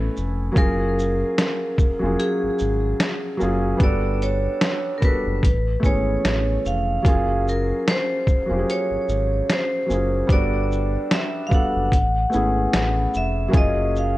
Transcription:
Already playing: felt piano A3 B3 C#4 E4 G#5, vibraphone A4
0.17 sub bass F1, shaker
0.52 felt piano F#3 A#3 C#4
0.56 sub bass F#1, felt piano F4 G#4, vibraphone A#4, kick, closed hi-hat
0.99 shaker
1.38 snare, closed hi-hat
1.78 kick, shaker
1.99 sub bass F1, felt piano F#3 A#3 C#4
2.04 felt piano F4 G#4
2.19 vibraphone G#4, closed hi-hat
2.43 sub bass G#1
2.59 sub bass G#1, shaker
3.00 snare, closed hi-hat
3.37 felt piano F#3 A#3 C#4, shaker
3.41 sub bass F#1, felt piano F4 G#4
3.77 sub bass G1, felt piano G3 B3 D4, kick, closed hi-hat
3.81 felt piano F#4 A4, vibraphone D5
4.22 vibraphone C#5, closed hi-hat, shaker
4.61 snare, closed hi-hat
4.98 felt piano G3 B3, vibraphone A#4
5.02 felt piano D4 F#4 A4, vibraphone B4, kick, closed hi-hat, shaker
5.26 sub bass F#1
5.43 sub bass A1, kick, closed hi-hat
5.80 sub bass G#1, felt piano A3 B3 C#4, kick
5.84 felt piano E3 G#4, vibraphone C#5, shaker
6.25 sub bass A1, snare, closed hi-hat
6.65 sub bass F1, vibraphone F5, shaker
7.02 sub bass F#1, felt piano F#3 A#3 C#4, kick, closed hi-hat
7.07 felt piano F4 G#4
7.48 vibraphone A#4, shaker
7.88 vibraphone C5, snare, closed hi-hat
8.27 kick, shaker
8.46 felt piano F#3 A#3 C#4
8.50 sub bass F1, felt piano F4 G4
8.59 felt piano G#4
8.70 vibraphone C#5, closed hi-hat
8.91 sub bass G#1
9.09 sub bass G#1, shaker
9.50 vibraphone C5, snare, closed hi-hat
9.86 sub bass F#1, felt piano F#3 A#3 C#4, shaker
9.91 felt piano F4 G#4
10.27 sub bass G1, felt piano G3 B3 D4, kick, closed hi-hat
10.32 felt piano F#4 A4, vibraphone D5
10.72 shaker
11.11 vibraphone E5, snare, closed hi-hat
11.47 felt piano G3 B3, vibraphone F5
11.51 felt piano D4 F#4 A4, vibraphone F#5, kick, shaker
11.76 sub bass F#1
11.92 sub bass A1, kick, closed hi-hat
12.30 felt piano A3 B3 C#4, shaker
12.34 sub bass G#1, felt piano E4 G#4
12.73 sub bass A1, snare, closed hi-hat
13.14 sub bass F1, vibraphone E5, shaker
13.48 felt piano F#3 A#3 C#4
13.53 sub bass F#1, felt piano F4 G#4, kick, closed hi-hat
13.57 vibraphone D#5
13.96 vibraphone F5, shaker

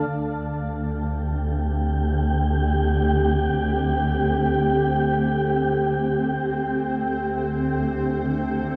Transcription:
Already playing: ambient pad D3 D4 A4 F5, synth texture A4 A5
0.09 double bass section D2, ambient pad A3, synth texture G4 G5
0.43 ambient pad C4
1.77 ambient pad G4
7.06 double bass section D2, ambient pad D3

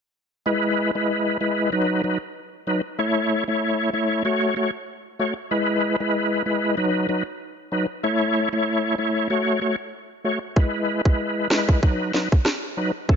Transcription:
0.46 tonewheel organ G#3 E4 B4
0.95 tonewheel organ G#3 E4 B4
1.41 tonewheel organ G#3 E4 B4
1.72 tonewheel organ F#3 D#4 B4
2.04 tonewheel organ F#3 D#4 B4
2.67 tonewheel organ F#3 D#4 B4
2.99 tonewheel organ A3 E4 C#5
3.48 tonewheel organ A3 E4 C#5
3.93 tonewheel organ A3 E4 C#5
4.25 tonewheel organ A3 F#4 C#5
4.56 tonewheel organ A3 F#4 C#5
5.19 tonewheel organ A3 F#4 C#5
5.51 tonewheel organ G#3 E4 B4
6.00 tonewheel organ G#3 E4 B4
6.46 tonewheel organ G#3 E4 B4
6.77 tonewheel organ F#3 D#4 B4
7.09 tonewheel organ F#3 D#4 B4
7.72 tonewheel organ F#3 D#4 B4
8.03 tonewheel organ A3 E4 C#5
8.53 tonewheel organ A3 E4 C#5
8.98 tonewheel organ A3 E4 C#5
9.30 tonewheel organ A3 F#4 C#5
9.61 tonewheel organ A3 F#4 C#5
10.25 tonewheel organ A3 F#4 C#5
10.56 tonewheel organ G#3 E4 B4, kick
11.05 tonewheel organ G#3 E4 B4, kick
11.50 tonewheel organ G#3 E4 B4, cross-stick, snare
11.69 kick
11.82 tonewheel organ F#3 D#4 B4, kick
12.14 tonewheel organ F#3 D#4 B4, snare
12.32 kick
12.45 cross-stick, snare
12.77 tonewheel organ F#3 D#4 B4
13.09 tonewheel organ E3 C#4 A4, kick

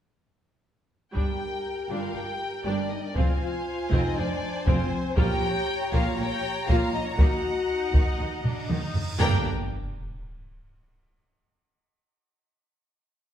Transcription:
1.14 double bass section G1, cello section G2, viola section G3 D4, french horn section G4, violin section A#4 G5, taiko
1.90 double bass section G1, cello section G2, viola section G3 D4, french horn section F4, violin section F5
2.15 double bass section G1, cello section G2, viola section G3 D4, french horn section G4, violin section G5
2.65 double bass section G1, cello section G2, viola section G3 D4, french horn section D4, violin section D5
2.90 french horn section D#4, violin section D#5
3.04 french horn section D4, violin section D5
3.16 double bass section F1, cello section F2, viola section C4 F4, french horn section F4, violin section C5 F5 G#5, taiko
3.41 french horn section F4, violin section F5
3.91 double bass section F1, cello section F2, viola section C4 F4, french horn section D#4, violin section D#5, taiko
4.16 double bass section F1, cello section F2, viola section C4 F4, french horn section D4, violin section D5
4.66 double bass section F1, cello section F2, french horn section C4, viola section C4 F4, violin section C5, taiko
5.17 double bass section A#1, cello section A#2, viola section A#3 F4, french horn section G4, violin section C#5 G5 A#5, taiko
5.92 double bass section A#1, cello section A#2, viola section A#3 F4, french horn section F4, violin section F5, taiko
6.18 double bass section A#1, cello section A#2, viola section A#3 F4, french horn section G4, violin section G5
6.68 double bass section A#1, cello section A#2, viola section A#3 F4, french horn section F4, violin section F5, taiko
6.93 french horn section D#4, violin section D#5
7.05 french horn section C#4, violin section C#5
7.17 double bass section D#2, cello section D#3, viola section A#3 D#4, french horn section F#4, violin section D#5 F#5, taiko, cymbal swell
7.69 viola section D#4
7.93 double bass section D#2, cello section D#3, taiko
8.18 double bass section D#2, cello section D#3
8.44 viola section D4, taiko low-mid
8.69 double bass section D#2, cello section D#3, viola section D#4, taiko mid
8.95 taiko low
9.19 double bass section G1, cello section G2, viola section A#3 D4, french horn section G4, violin section A#4 G5 A#5, taiko low, sub drop

